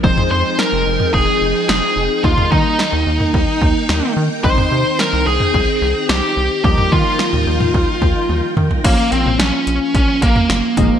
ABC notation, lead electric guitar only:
X:1
M:4/4
L:1/8
Q:1/4=109
K:Bbdor
V:1 name="Lead electric guitar"
c c B2 A2 A2 | F E6 z | c2 B A3 G2 | G F6 z |
B, C D2 D B,3 |]